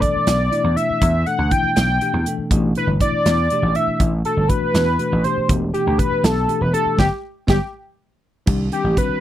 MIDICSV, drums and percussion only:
0, 0, Header, 1, 2, 480
1, 0, Start_track
1, 0, Tempo, 497512
1, 975, Time_signature, 6, 3, 24, 8
1, 8878, End_track
2, 0, Start_track
2, 0, Title_t, "Drums"
2, 20, Note_on_c, 9, 36, 67
2, 22, Note_on_c, 9, 42, 53
2, 116, Note_off_c, 9, 36, 0
2, 119, Note_off_c, 9, 42, 0
2, 259, Note_on_c, 9, 42, 78
2, 263, Note_on_c, 9, 38, 96
2, 356, Note_off_c, 9, 42, 0
2, 359, Note_off_c, 9, 38, 0
2, 507, Note_on_c, 9, 42, 65
2, 603, Note_off_c, 9, 42, 0
2, 743, Note_on_c, 9, 42, 56
2, 839, Note_off_c, 9, 42, 0
2, 980, Note_on_c, 9, 42, 78
2, 981, Note_on_c, 9, 36, 88
2, 1076, Note_off_c, 9, 42, 0
2, 1078, Note_off_c, 9, 36, 0
2, 1220, Note_on_c, 9, 42, 50
2, 1317, Note_off_c, 9, 42, 0
2, 1458, Note_on_c, 9, 42, 53
2, 1460, Note_on_c, 9, 36, 73
2, 1554, Note_off_c, 9, 42, 0
2, 1557, Note_off_c, 9, 36, 0
2, 1701, Note_on_c, 9, 42, 74
2, 1705, Note_on_c, 9, 38, 94
2, 1797, Note_off_c, 9, 42, 0
2, 1801, Note_off_c, 9, 38, 0
2, 1941, Note_on_c, 9, 42, 65
2, 2038, Note_off_c, 9, 42, 0
2, 2182, Note_on_c, 9, 42, 67
2, 2279, Note_off_c, 9, 42, 0
2, 2420, Note_on_c, 9, 36, 93
2, 2421, Note_on_c, 9, 42, 85
2, 2517, Note_off_c, 9, 36, 0
2, 2518, Note_off_c, 9, 42, 0
2, 2656, Note_on_c, 9, 42, 51
2, 2753, Note_off_c, 9, 42, 0
2, 2899, Note_on_c, 9, 36, 72
2, 2900, Note_on_c, 9, 42, 66
2, 2996, Note_off_c, 9, 36, 0
2, 2996, Note_off_c, 9, 42, 0
2, 3141, Note_on_c, 9, 42, 81
2, 3145, Note_on_c, 9, 38, 108
2, 3238, Note_off_c, 9, 42, 0
2, 3242, Note_off_c, 9, 38, 0
2, 3380, Note_on_c, 9, 42, 68
2, 3477, Note_off_c, 9, 42, 0
2, 3618, Note_on_c, 9, 42, 60
2, 3715, Note_off_c, 9, 42, 0
2, 3859, Note_on_c, 9, 36, 93
2, 3859, Note_on_c, 9, 42, 69
2, 3955, Note_off_c, 9, 36, 0
2, 3956, Note_off_c, 9, 42, 0
2, 4100, Note_on_c, 9, 42, 55
2, 4196, Note_off_c, 9, 42, 0
2, 4337, Note_on_c, 9, 36, 75
2, 4337, Note_on_c, 9, 42, 59
2, 4433, Note_off_c, 9, 42, 0
2, 4434, Note_off_c, 9, 36, 0
2, 4578, Note_on_c, 9, 42, 74
2, 4582, Note_on_c, 9, 38, 100
2, 4675, Note_off_c, 9, 42, 0
2, 4679, Note_off_c, 9, 38, 0
2, 4818, Note_on_c, 9, 42, 57
2, 4914, Note_off_c, 9, 42, 0
2, 5058, Note_on_c, 9, 42, 60
2, 5155, Note_off_c, 9, 42, 0
2, 5300, Note_on_c, 9, 36, 105
2, 5302, Note_on_c, 9, 42, 72
2, 5397, Note_off_c, 9, 36, 0
2, 5398, Note_off_c, 9, 42, 0
2, 5542, Note_on_c, 9, 42, 59
2, 5638, Note_off_c, 9, 42, 0
2, 5780, Note_on_c, 9, 36, 76
2, 5781, Note_on_c, 9, 42, 56
2, 5877, Note_off_c, 9, 36, 0
2, 5878, Note_off_c, 9, 42, 0
2, 6021, Note_on_c, 9, 42, 76
2, 6025, Note_on_c, 9, 38, 108
2, 6117, Note_off_c, 9, 42, 0
2, 6121, Note_off_c, 9, 38, 0
2, 6263, Note_on_c, 9, 42, 63
2, 6359, Note_off_c, 9, 42, 0
2, 6503, Note_on_c, 9, 42, 67
2, 6599, Note_off_c, 9, 42, 0
2, 6740, Note_on_c, 9, 36, 80
2, 6745, Note_on_c, 9, 38, 93
2, 6836, Note_off_c, 9, 36, 0
2, 6841, Note_off_c, 9, 38, 0
2, 7219, Note_on_c, 9, 36, 88
2, 7222, Note_on_c, 9, 38, 86
2, 7316, Note_off_c, 9, 36, 0
2, 7319, Note_off_c, 9, 38, 0
2, 8172, Note_on_c, 9, 49, 90
2, 8176, Note_on_c, 9, 36, 106
2, 8268, Note_off_c, 9, 49, 0
2, 8273, Note_off_c, 9, 36, 0
2, 8413, Note_on_c, 9, 42, 53
2, 8510, Note_off_c, 9, 42, 0
2, 8655, Note_on_c, 9, 36, 78
2, 8655, Note_on_c, 9, 42, 51
2, 8752, Note_off_c, 9, 36, 0
2, 8752, Note_off_c, 9, 42, 0
2, 8878, End_track
0, 0, End_of_file